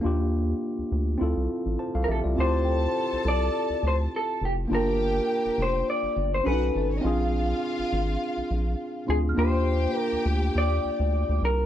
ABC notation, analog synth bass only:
X:1
M:4/4
L:1/16
Q:"Swing 16ths" 1/4=103
K:Eblyd
V:1 name="Analog synth bass" clef=bass
E,,4 z D,, D,,2 D,, C,, z A,,, z C,, B,,, C,, | D,,4 z C,, C,,2 z D,, D,,2 z2 F,,,2 | G,,,4 z F,,, F,,,2 z G,,, G,,,2 =B,,,2 ^G,,,2 | B,,,4 z _A,,, A,,,2 z B,,, B,,,2 z2 D,,2 |
E,,4 z D,, D,,2 E,,2 D,, D,,2 D,, C,,2 |]